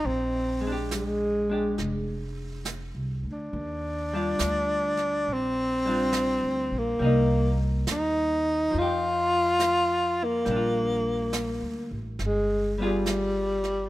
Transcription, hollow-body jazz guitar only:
X:1
M:4/4
L:1/8
Q:"Swing" 1/4=69
K:Bb
V:1 name="Hollow-body jazz guitar"
z [_A,DG]2 [A,DG]4- [A,DG] | z [G,DF]4 [G,DF]3 | [G,B,E]4 [F,EG]4 | [G,DF]4 z [G,=B,F_A]3 |]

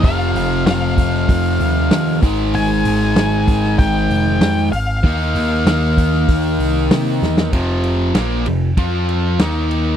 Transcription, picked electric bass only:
X:1
M:4/4
L:1/8
Q:1/4=96
K:Fm
V:1 name="Picked electric bass" clef=bass
F,,, F,,, F,,,2 F,,, E,, E,, A,,, | A,,, A,,, A,,,2 A,,, F,,, F,, A,,, | E,, E,, E,,2 E,, C,, C, =E,, | F,,,2 B,,, F,,, F,,2 E,,2 |]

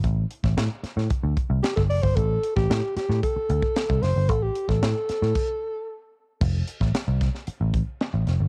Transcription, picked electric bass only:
X:1
M:4/4
L:1/16
Q:1/4=113
K:Flyd
V:1 name="Picked electric bass" clef=bass
A,,,2 z A,,, A,, z2 A,, z D,, z C,, z G,,, ^F,,, G,,, | A,,,2 z A,,, A,, z2 A,, z2 D,, z2 C,, ^F,,, G,,, | A,,,2 z A,,, A,, z2 A,, z8 | F,,,2 z A,,, z C,,2 z2 A,,,2 z2 A,,, F,,, G,,, |]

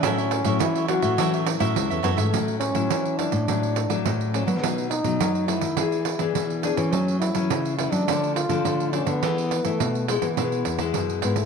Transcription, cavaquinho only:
X:1
M:4/4
L:1/16
Q:1/4=104
K:A
V:1 name="Cavaquinho"
[FAce] [Ace] z [Ace]2 [Ace]2 [Ace] [FAce] [Ace] z [Ace]2 [Ace] [FAce] [Ace] | z16 | z16 | z16 |
z16 |]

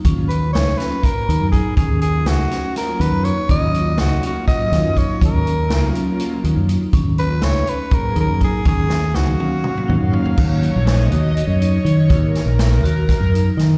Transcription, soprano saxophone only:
X:1
M:7/8
L:1/8
Q:1/4=122
K:Ebm
V:1 name="Soprano saxophone"
z c d c B2 A | A A G2 B c d | e2 G G e2 d | B3 z4 |
z c d c B B A | A2 G4 z | z6 z | z6 z |]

